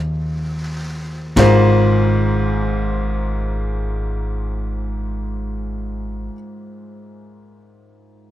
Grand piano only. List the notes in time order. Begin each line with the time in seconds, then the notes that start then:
Already playing: F3 A#3 D#4 G#4 C5
1.37 G#2 G#3 F4 A#4 C5